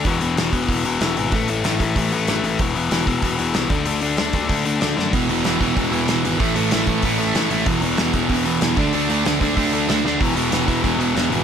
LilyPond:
<<
  \new Staff \with { instrumentName = "Distorted electric guitar" } { \clef bass \time 4/4 \key d \mixolydian \tempo 4 = 189 r1 | r1 | r1 | r1 |
<e, b, e>8 <e, b, e>8 <e, b, e>8 <e, b, e>8 <e, b, e>8 <e, b, e>8 <e, b, e>8 <e, b, e>8 | <a, e a>8 <a, e a>8 <a, e a>8 <a, e a>8 <a, e a>8 <a, e a>8 <a, e a>8 <a, e a>8 | <e, b, e>8 <e, b, e>8 <e, b, e>8 <e, b, e>8 <e, b, e>8 <e, b, e>8 <e, b, e>8 <d a d'>8 | <d a d'>8 <d a d'>8 <d a d'>8 <d a d'>8 <d a d'>8 <d a d'>8 <d a d'>8 <d a d'>8 |
<e, b, e>8 <e, b, e>8 <e, b, e>8 <e, b, e>8 <e, b, e>8 <e, b, e>8 <e, b, e>8 <e, b, e>8 | }
  \new Staff \with { instrumentName = "Overdriven electric guitar" } { \clef bass \time 4/4 \key d \mixolydian <e, b, e>8 <e, b, e>8 <e, b, e>8 <e, b, e>8 <e, b, e>8 <e, b, e>8 <e, b, e>8 <e, b, e>8 | <a, e a>8 <a, e a>8 <a, e a>8 <a, e a>8 <a, e a>8 <a, e a>8 <a, e a>8 <a, e a>8 | <e, b, e>8 <e, b, e>8 <e, b, e>8 <e, b, e>8 <e, b, e>8 <e, b, e>8 <e, b, e>8 <d a d'>8 | <d a d'>8 <d a d'>8 <d a d'>8 <d a d'>8 <d a d'>8 <d a d'>8 <d a d'>8 <d a d'>8 |
<e, b, e>8 <e, b, e>8 <e, b, e>8 <e, b, e>8 <e, b, e>8 <e, b, e>8 <e, b, e>8 <e, b, e>8 | <a, e a>8 <a, e a>8 <a, e a>8 <a, e a>8 <a, e a>8 <a, e a>8 <a, e a>8 <a, e a>8 | <e, b, e>8 <e, b, e>8 <e, b, e>8 <e, b, e>8 <e, b, e>8 <e, b, e>8 <e, b, e>8 <d a d'>8 | <d a d'>8 <d a d'>8 <d a d'>8 <d a d'>8 <d a d'>8 <d a d'>8 <d a d'>8 <d a d'>8 |
<e, b, e>8 <e, b, e>8 <e, b, e>8 <e, b, e>8 <e, b, e>8 <e, b, e>8 <e, b, e>8 <e, b, e>8 | }
  \new Staff \with { instrumentName = "Picked electric bass" } { \clef bass \time 4/4 \key d \mixolydian e,,4 e,,8 e,,8 e,,4 e,,8 gis,,8 | a,,4 a,,8 a,,8 a,,4 a,,8 a,,8 | e,,4 e,,8 e,,8 e,,4 c,8 d,8 | d,4 d,8 d,8 d,4 d,8 fis,8 |
e,,4 e,,8 e,,8 e,,4 e,,8 gis,,8 | a,,4 a,,8 a,,8 a,,4 a,,8 a,,8 | e,,4 e,,8 e,,8 e,,4 e,8 d,8 | d,4 d,8 d,8 d,4 d,8 d,8 |
e,,4 e,,8 e,,8 e,,4 e,,8 gis,,8 | }
  \new DrumStaff \with { instrumentName = "Drums" } \drummode { \time 4/4 <hho bd>8 hho8 <hho sn>8 <hho bd>8 <hho bd>8 hho8 <hho sn>8 hho8 | <hho bd>8 hho8 <hho sn>8 <hho bd>8 <hho bd>8 hho8 <hho sn>8 hho8 | <hho bd>8 hho8 <hho sn>8 <hho bd>8 <hho bd>8 hho8 <hho sn>8 <hho bd>8 | hho8 hho8 <hho sn>8 <hho bd>8 <hho bd>8 hho8 <hho sn>8 sn8 |
<hho bd>8 hho8 <hho sn>8 <hho bd>8 <hho bd>8 hho8 <hho sn>8 hho8 | <hho bd>8 hho8 <hho sn>8 <hho bd>8 <hho bd>8 hho8 <hho sn>8 hho8 | <hho bd>8 hho8 <hho sn>8 <hho bd>8 <hho bd>8 hho8 <hho sn>8 <hho bd>8 | hho8 hho8 <hho sn>8 <hho bd>8 <hho bd>8 hho8 <hho sn>8 sn8 |
<hho bd>8 hho8 <hho sn>8 <hho bd>8 <hho bd>8 hho8 <hho sn>8 hho8 | }
>>